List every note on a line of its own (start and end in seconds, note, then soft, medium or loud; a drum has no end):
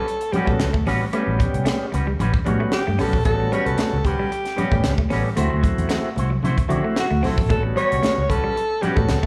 0.00 0.34 A4 loud
0.07 muted clean electric guitar stroke soft
0.07 closed hi-hat medium
0.21 muted clean electric guitar stroke soft
0.21 closed hi-hat medium
0.32 0.45 G3 medium
0.32 0.70 G3 medium
0.32 0.52 G3 medium
0.32 0.70 B3 medium
0.32 0.70 C#4 medium
0.32 0.48 C#4 medium
0.32 0.70 F#4 medium
0.32 0.48 F#4 medium
0.32 0.49 G4 medium
0.32 0.48 B4 loud
0.32 muted fingered electric bass stroke soft
0.32 closed hi-hat medium
0.32 low conga medium
0.46 0.57 A1 medium
0.46 0.57 A3 medium
0.46 0.87 A4 medium
0.46 muted clean electric guitar stroke soft
0.46 kick medium
0.59 0.80 C#2 medium
0.59 muted clean electric guitar stroke soft
0.59 snare loud
0.59 closed hi-hat medium
0.59 high conga medium
0.73 0.84 A3 medium
0.73 muted clean electric guitar stroke soft
0.73 kick loud
0.86 0.97 A1 medium
0.86 1.05 G3 medium
0.86 1.05 B3 medium
0.86 1.05 C#4 medium
0.86 0.99 C#4 medium
0.86 1.01 C#4 medium
0.86 1.05 F#4 medium
0.86 1.01 F#4 medium
0.86 1.01 B4 loud
0.86 snare soft
0.86 open hi-hat medium
0.86 high conga medium
1.02 muted clean electric guitar stroke soft
1.13 1.38 G3 medium
1.13 1.86 G3 medium
1.13 1.25 A3 medium
1.13 1.86 B3 medium
1.13 1.86 C#4 medium
1.13 1.38 C#4 medium
1.13 1.38 F#4 medium
1.13 1.86 G4 medium
1.13 1.38 B4 medium
1.13 closed hi-hat loud
1.13 muted conga medium
1.27 1.37 A1 loud
1.27 muted clean electric guitar stroke soft
1.39 1.51 G3 medium
1.39 kick medium
1.39 closed hi-hat medium
1.39 muted conga soft
1.54 1.64 C2 medium
1.54 muted clean electric guitar stroke soft
1.54 closed hi-hat medium
1.65 1.77 A3 medium
1.65 muted clean electric guitar stroke soft
1.65 snare loud
1.65 closed hi-hat medium
1.65 high conga medium
1.92 2.14 C#2 loud
1.92 2.08 G3 medium
1.92 2.07 C#4 medium
1.92 2.07 F#4 medium
1.92 2.06 B4 medium
1.92 muted clean electric guitar stroke soft
1.92 closed hi-hat medium
1.92 muted conga medium
2.07 2.17 G3 medium
2.07 muted clean electric guitar stroke soft
2.19 2.30 A1 loud
2.19 2.38 G3 medium
2.19 2.33 C#4 medium
2.19 2.33 F#4 medium
2.19 2.32 B4 medium
2.19 muted clean electric guitar stroke soft
2.19 closed hi-hat medium
2.19 low conga medium
2.33 muted clean electric guitar stroke soft
2.33 kick medium
2.45 2.57 A2 loud
2.45 2.82 G3 medium
2.45 2.61 G3 medium
2.45 2.58 G3 medium
2.45 2.82 B3 medium
2.45 2.82 C#4 medium
2.45 2.60 C#4 medium
2.45 2.82 F#4 loud
2.45 2.60 F#4 medium
2.45 2.60 C#5 medium
2.45 closed hi-hat medium
2.45 muted conga soft
2.45 low conga medium
2.60 2.71 A3 medium
2.60 muted clean electric guitar stroke soft
2.72 3.02 G4 loud
2.72 muted clean electric guitar stroke soft
2.72 snare loud
2.72 closed hi-hat medium
2.72 high conga medium
2.87 2.97 G2 medium
2.87 2.97 A3 medium
2.98 3.11 B1 medium
2.98 3.17 G3 medium
2.98 3.14 G3 medium
2.98 3.17 B3 medium
2.98 3.11 C#4 medium
2.98 3.18 C#4 medium
2.98 3.13 C#4 medium
2.98 3.18 F#4 medium
2.98 3.13 F#4 medium
2.98 3.25 A4 loud
2.98 3.12 B4 medium
2.98 snare soft
2.98 open hi-hat medium
2.98 high conga medium
3.13 3.23 A#1 medium
3.13 muted clean electric guitar stroke soft
3.13 kick medium
3.25 3.46 A1 loud
3.25 3.98 G3 medium
3.25 3.37 A3 medium
3.25 3.98 B3 medium
3.25 3.98 C#4 medium
3.25 3.98 F#4 medium
3.25 3.54 A4 loud
3.25 kick loud
3.25 closed hi-hat medium
3.25 muted conga medium
3.40 muted clean electric guitar stroke soft
3.52 3.70 G3 medium
3.52 3.64 G3 medium
3.52 3.71 C#4 medium
3.52 3.71 F#4 medium
3.52 3.71 B4 loud
3.52 3.67 C#5 loud
3.52 closed hi-hat medium
3.52 muted conga medium
3.66 3.76 C2 medium
3.66 4.07 A4 medium
3.66 closed hi-hat medium
3.78 3.90 A3 medium
3.78 muted clean electric guitar stroke soft
3.78 muted fingered electric bass stroke soft
3.78 snare loud
3.78 closed hi-hat medium
3.78 high conga medium
3.92 4.14 C#2 medium
3.92 muted clean electric guitar stroke soft
4.05 4.19 G3 medium
4.05 4.18 C#4 medium
4.05 4.18 F#4 medium
4.05 5.11 G4 medium
4.05 4.18 B4 medium
4.05 muted clean electric guitar stroke medium
4.05 kick medium
4.05 closed hi-hat medium
4.05 muted conga medium
4.19 4.30 G3 medium
4.19 4.31 C#4 medium
4.19 4.31 F#4 medium
4.19 4.31 B4 medium
4.31 muted clean electric guitar stroke soft
4.31 closed hi-hat medium
4.45 muted clean electric guitar stroke medium
4.45 snare soft
4.45 closed hi-hat medium
4.56 4.94 G3 medium
4.56 4.76 G3 medium
4.56 4.70 G3 medium
4.56 4.94 B3 medium
4.56 4.94 C#4 medium
4.56 4.72 C#4 medium
4.56 4.71 F#4 medium
4.56 4.94 G4 medium
4.56 4.71 B4 medium
4.56 muted fingered electric bass stroke medium
4.56 closed hi-hat medium
4.56 low conga medium
4.72 4.82 A1 medium
4.72 4.82 A3 medium
4.72 muted clean electric guitar stroke soft
4.72 kick loud
4.83 5.05 C#2 medium
4.83 muted clean electric guitar stroke soft
4.83 snare loud
4.83 closed hi-hat medium
4.83 high conga medium
4.98 5.09 A3 medium
4.98 muted clean electric guitar stroke soft
4.98 kick loud
5.10 5.22 A1 medium
5.10 5.29 G3 medium
5.10 5.29 B3 medium
5.10 5.29 C#4 medium
5.10 5.22 C#4 medium
5.10 5.24 C#4 medium
5.10 5.24 F#4 medium
5.10 5.30 A4 medium
5.10 5.23 B4 medium
5.10 snare soft
5.10 open hi-hat medium
5.10 high conga medium
5.24 muted clean electric guitar stroke soft
5.35 5.48 D2 loud
5.35 6.09 A3 medium
5.35 5.62 A3 medium
5.35 5.49 A3 medium
5.35 6.10 C4 medium
5.35 6.10 E4 medium
5.35 5.62 E4 medium
5.35 6.10 F#4 medium
5.35 5.62 F#4 medium
5.35 5.62 C5 medium
5.35 closed hi-hat loud
5.35 muted conga medium
5.50 5.61 D2 loud
5.50 muted clean electric guitar stroke soft
5.63 5.75 F#3 medium
5.63 kick loud
5.63 closed hi-hat medium
5.63 muted conga medium
5.78 5.88 E2 medium
5.78 muted clean electric guitar stroke soft
5.78 closed hi-hat medium
5.89 6.01 A3 medium
5.89 muted clean electric guitar stroke soft
5.89 snare loud
5.89 closed hi-hat medium
5.89 high conga medium
6.16 6.38 C2 loud
6.16 6.32 A3 medium
6.16 6.31 E4 medium
6.16 6.31 F#4 medium
6.16 6.30 C5 medium
6.16 muted clean electric guitar stroke soft
6.16 closed hi-hat medium
6.16 muted conga medium
6.30 6.41 F#3 medium
6.30 muted clean electric guitar stroke soft
6.43 6.55 C3 medium
6.43 6.62 A3 medium
6.43 6.58 E4 medium
6.43 6.57 F#4 medium
6.43 6.57 C5 medium
6.43 muted clean electric guitar stroke soft
6.43 closed hi-hat medium
6.43 low conga medium
6.58 muted clean electric guitar stroke medium
6.58 kick medium
6.58 closed hi-hat medium
6.69 6.81 D3 loud
6.69 6.82 F#3 medium
6.69 7.06 A3 medium
6.69 6.85 A3 medium
6.69 7.06 C4 medium
6.69 7.06 E4 medium
6.69 6.84 E4 medium
6.69 7.07 F#4 loud
6.69 6.84 F#4 medium
6.69 6.84 D5 medium
6.69 closed hi-hat medium
6.69 low conga medium
6.84 6.95 A3 medium
6.84 muted clean electric guitar stroke soft
6.95 muted clean electric guitar stroke soft
6.95 snare loud
6.95 closed hi-hat medium
6.95 high conga medium
7.00 7.27 F#4 medium
7.11 7.21 D2 medium
7.11 7.21 A3 medium
7.22 7.35 B1 medium
7.22 7.41 A3 medium
7.22 7.38 A3 medium
7.22 7.42 C4 medium
7.22 7.35 C4 medium
7.22 7.42 E4 medium
7.22 7.38 E4 medium
7.22 7.42 F#4 medium
7.22 7.37 F#4 medium
7.22 7.50 A4 medium
7.22 7.36 C5 medium
7.22 snare soft
7.22 open hi-hat medium
7.22 high conga medium
7.37 7.50 A#1 medium
7.37 muted clean electric guitar stroke soft
7.37 kick loud
7.49 7.71 A1 loud
7.49 8.22 G3 medium
7.49 7.62 A3 medium
7.49 8.22 B3 medium
7.49 8.22 C#4 medium
7.49 8.23 F#4 medium
7.49 7.63 A4 loud
7.49 kick loud
7.49 closed hi-hat medium
7.49 muted conga medium
7.63 muted clean electric guitar stroke soft
7.75 7.94 G3 medium
7.75 7.88 G3 medium
7.75 7.95 C#4 medium
7.75 7.95 F#4 medium
7.75 7.96 B4 loud
7.75 8.31 C#5 loud
7.75 closed hi-hat medium
7.75 muted conga soft
7.92 8.01 C2 medium
7.92 closed hi-hat medium
8.03 8.15 A3 medium
8.03 muted clean electric guitar stroke soft
8.03 muted fingered electric bass stroke soft
8.03 snare loud
8.03 closed hi-hat medium
8.03 high conga medium
8.17 8.38 C#2 medium
8.17 muted clean electric guitar stroke soft
8.29 8.44 G3 medium
8.29 8.44 C#4 medium
8.29 8.43 F#4 medium
8.29 8.84 A4 loud
8.29 8.43 B4 medium
8.29 muted clean electric guitar stroke soft
8.29 kick medium
8.29 closed hi-hat medium
8.29 muted conga medium
8.44 8.54 G3 medium
8.44 8.55 G3 medium
8.44 8.56 C#4 medium
8.44 8.56 F#4 medium
8.44 8.57 B4 medium
8.56 muted clean electric guitar stroke soft
8.56 closed hi-hat medium
8.70 muted clean electric guitar stroke soft
8.81 9.19 G3 medium
8.81 8.94 G3 medium
8.81 9.01 G3 medium
8.81 9.19 B3 medium
8.81 9.19 C#4 medium
8.81 8.97 C#4 loud
8.81 9.19 F#4 medium
8.81 8.96 F#4 medium
8.81 8.97 G4 medium
8.81 8.96 B4 loud
8.81 muted fingered electric bass stroke soft
8.81 closed hi-hat medium
8.81 low conga medium
8.96 9.06 A1 medium
8.96 9.07 A3 medium
8.96 9.26 A4 medium
8.96 muted clean electric guitar stroke soft
8.96 kick loud
9.09 9.26 C#2 medium
9.09 muted clean electric guitar stroke soft
9.09 snare loud
9.09 closed hi-hat medium
9.09 high conga medium
9.23 9.26 A3 medium
9.23 muted clean electric guitar stroke soft
9.23 kick loud